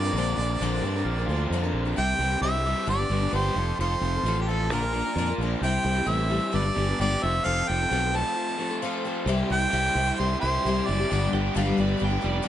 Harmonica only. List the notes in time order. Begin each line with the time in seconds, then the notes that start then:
Already playing: D5
1.98 G5
2.42 E5
2.89 D5
3.34 C5
3.80 C5
4.41 G4
4.49 A4
4.72 A#4
5.63 G5
6.08 E5
6.56 D5
7.01 D5
7.23 E5
7.45 F5
7.68 G5
8.16 A5
9.52 G5
10.20 C5
10.41 C5
10.88 D5